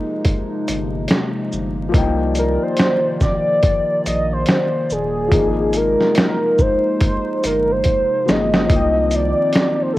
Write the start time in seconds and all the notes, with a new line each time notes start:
Already playing: C3 F3 G#3 A#3 D#4 G#4
0.25 kick, closed hi-hat
0.68 G1, closed hi-hat, shaker
1.08 snare, closed hi-hat
1.53 G1, shaker
1.89 F3 A#3
1.94 C2 D#3 D#4 D5 G5, kick, closed hi-hat
2.35 A#4, closed hi-hat, shaker
2.63 C5
2.77 snare, closed hi-hat
3.21 D5, kick, snare, shaker
3.63 kick, closed hi-hat
4.06 A#1 D#5, closed hi-hat, shaker
4.33 C5
4.46 C5, snare, closed hi-hat
4.90 D#1 G#4, shaker
5.28 F3 G#3 A#3, kick, closed hi-hat
5.32 G#1 C3 D#4
5.36 G#4
5.73 A#4, closed hi-hat, shaker
6.01 snare
6.15 snare, closed hi-hat
6.19 A#4
6.59 C5, kick, shaker
7.01 kick, closed hi-hat
7.44 G1 A#4, closed hi-hat, shaker
7.71 C5
7.84 kick, closed hi-hat
8.25 G1 F3 A#3 D#4 G#4, snare, shaker
8.30 D#5
8.54 snare
8.67 C2 D#3 F3 A#3 C4 D#4, kick, closed hi-hat
8.72 D#4 G5
9.11 closed hi-hat, shaker
9.15 D5
9.53 snare, closed hi-hat
9.82 C5
9.94 A4